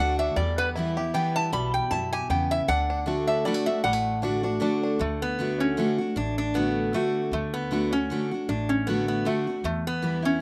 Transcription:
0.00 0.31 D2 loud
0.00 0.35 D3 medium
0.00 0.35 A3 medium
0.00 0.19 D4 medium
0.00 0.36 D4 loud
0.00 0.36 F#4 medium
0.00 0.18 F#5 loud
0.19 0.37 D4 medium
0.19 0.36 E5 loud
0.36 1.13 E2 loud
0.36 1.11 E2 medium
0.36 0.92 G3 medium
0.36 0.57 D5 medium
0.58 1.11 B3 medium
0.58 0.68 B4 loud
0.76 0.96 E3 medium
0.76 0.97 G3 medium
0.76 0.97 B3 medium
0.76 1.31 E4 medium
0.76 0.96 E4 medium
0.97 1.15 B3 soft
0.97 1.14 E4 medium
0.97 1.49 G4 medium
1.14 1.51 E3 medium
1.14 1.51 G3 loud
1.14 1.70 B3 medium
1.14 1.52 B3 loud
1.14 1.52 E4 medium
1.14 1.35 G5 medium
1.36 1.88 E4 medium
1.36 1.52 A5 loud
1.53 1.78 B1 medium
1.53 1.92 B2 loud
1.53 2.08 G3 medium
1.53 1.73 B5 loud
1.74 1.91 G5 loud
1.91 2.24 F#2 medium
1.91 2.29 B2 medium
1.91 2.47 E4 medium
1.91 2.12 A5 loud
2.13 2.65 G4 medium
2.13 2.29 G#5 loud
2.30 2.62 E2 loud
2.30 2.67 C#3 medium
2.30 2.68 B3 medium
2.30 2.51 G5 medium
2.51 2.69 E4 medium
2.51 2.68 E5 loud
2.68 3.44 D2 loud
2.68 3.05 D3 medium
2.68 2.90 D4 medium
2.68 3.24 F#5 loud
2.90 3.29 D4 medium
3.06 3.43 D3 medium
3.06 3.44 A3 medium
3.06 3.45 A3 medium
3.06 3.44 D4 medium
3.06 3.44 F#4 medium
3.27 4.23 D4 medium
3.27 3.45 E5 loud
3.45 3.66 D3 loud
3.45 3.54 G3 medium
3.45 3.66 A3 medium
3.45 3.67 D4 medium
3.45 3.65 F#4 loud
3.45 3.66 D5 medium
3.54 3.84 A3 medium
3.66 4.19 D3 medium
3.66 3.84 D4 medium
3.66 3.83 F#4 medium
3.66 3.83 E5 loud
3.84 4.60 A1 medium
3.84 4.58 A2 medium
3.84 3.93 G3 medium
3.84 4.87 F#5 loud
3.93 4.23 A3 medium
4.22 4.43 D3 medium
4.22 4.43 A3 medium
4.22 4.43 D4 medium
4.22 4.44 D4 medium
4.22 4.42 F#4 loud
4.43 4.61 D4 medium
4.43 4.60 D4 medium
4.43 4.60 F#4 medium
4.60 4.98 D3 medium
4.60 4.98 A3 medium
4.60 4.98 D4 medium
4.60 4.82 D4 medium
4.60 4.99 F#4 loud
4.83 5.00 D4 medium
4.99 5.76 D2 medium
4.99 5.37 D3 medium
4.99 5.22 A3 medium
5.22 5.62 B3 loud
5.39 5.76 D3 medium
5.39 5.76 A3 medium
5.39 5.76 D4 loud
5.39 5.77 F#4 medium
5.60 5.96 C#4 medium
5.77 5.98 D3 medium
5.77 5.98 A3 medium
5.77 5.98 D4 medium
5.77 5.97 F#4 loud
5.98 6.16 D4 soft
5.98 6.15 F#4 medium
6.16 6.92 A1 medium
6.16 6.90 A2 medium
6.16 6.36 D4 medium
6.38 6.56 D4 medium
6.54 6.91 D3 medium
6.54 6.92 A3 medium
6.54 6.95 B3 medium
6.54 6.92 D4 medium
6.54 6.93 F#4 medium
6.93 7.30 D3 medium
6.93 7.31 A3 medium
6.93 7.22 A3 medium
6.93 7.31 D4 loud
6.93 7.31 F#4 loud
7.32 8.08 D2 loud
7.32 7.70 D3 medium
7.32 7.54 A3 medium
7.54 7.93 B3 loud
7.71 7.91 D3 medium
7.71 7.92 A3 medium
7.71 7.92 D4 medium
7.71 7.92 F#4 medium
7.93 8.28 C#4 loud
7.93 8.10 D4 soft
7.93 8.09 F#4 medium
8.10 8.30 D3 loud
8.10 8.31 A3 loud
8.10 8.31 D4 loud
8.10 8.30 F#4 medium
8.31 8.49 D4 soft
8.31 8.48 F#4 medium
8.48 9.25 A1 medium
8.48 9.22 A2 loud
8.48 8.68 D4 medium
8.69 8.87 C#4 medium
8.87 9.24 D3 medium
8.87 9.25 A3 medium
8.87 9.07 B3 medium
8.87 9.25 D4 medium
8.87 9.25 F#4 medium
9.08 9.26 B3 medium
9.25 9.46 D3 medium
9.25 9.46 A3 medium
9.25 9.54 A3 medium
9.25 9.46 D4 medium
9.25 9.46 F#4 medium
9.47 9.65 D4 soft
9.47 9.64 F#4 medium
9.64 10.40 E2 medium
9.64 10.38 E2 medium
9.64 9.84 A3 medium
9.87 10.22 B3 loud
10.02 10.23 E3 medium
10.02 10.23 G3 medium
10.02 10.23 B3 medium
10.02 10.21 E4 medium
10.22 10.41 B3 soft
10.22 10.41 C#4 loud
10.22 10.40 E4 medium

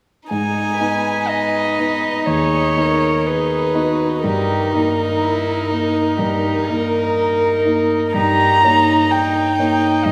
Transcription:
0.29 0.79 G#2 soft
0.29 4.19 D#4 soft
0.29 0.77 D#4 soft
0.29 1.30 G#5 medium
0.80 1.74 B3 soft
0.80 1.75 D#4 soft
0.80 2.24 B4 soft
0.80 1.75 D#5 soft
1.28 2.28 D#5 soft
1.78 2.23 B3 soft
1.78 2.24 D#4 soft
1.78 2.24 D#5 soft
2.26 2.75 D#2 soft
2.26 2.79 G#4 soft
2.26 3.28 C#5 medium
2.76 3.71 B3 soft
2.76 3.71 D#4 soft
2.76 3.28 A#4 soft
2.76 3.71 D#5 soft
3.26 3.77 G#4 soft
3.26 4.22 B4 medium
3.74 4.20 B3 soft
3.74 4.20 D#4 soft
3.74 4.24 F#4 soft
3.74 4.20 D#5 soft
4.23 4.72 G2 soft
4.23 8.10 D#4 soft
4.23 4.74 G4 soft
4.23 7.61 A#4 medium
4.73 5.66 A#3 soft
4.73 5.23 D#4 soft
4.73 5.67 D#4 soft
4.73 5.67 D#5 soft
5.22 5.69 E4 soft
5.69 6.15 A#3 soft
5.69 6.18 D#4 soft
5.69 6.15 D#4 soft
5.69 6.15 D#5 soft
6.17 6.66 G2 soft
6.17 6.68 G4 soft
6.66 7.62 A#3 soft
6.66 7.62 D#4 soft
6.66 8.16 A#4 medium
6.66 7.62 D#5 soft
7.65 8.10 A#3 soft
7.65 8.10 D#4 soft
7.65 8.10 D#5 soft
8.13 8.61 G2 soft
8.13 10.12 D#4 soft
8.13 8.65 G4 medium
8.13 9.13 A#5 medium
8.64 9.54 A#3 soft
8.64 9.11 D#4 soft
8.64 9.55 D#4 soft
8.64 9.55 C#5 soft
9.11 10.12 D#4 medium
9.11 10.07 G5 medium
9.59 10.01 A#3 soft
9.59 10.01 D#4 soft
9.59 10.02 C#5 soft
10.05 10.12 G2 soft
10.05 10.12 D#5 medium

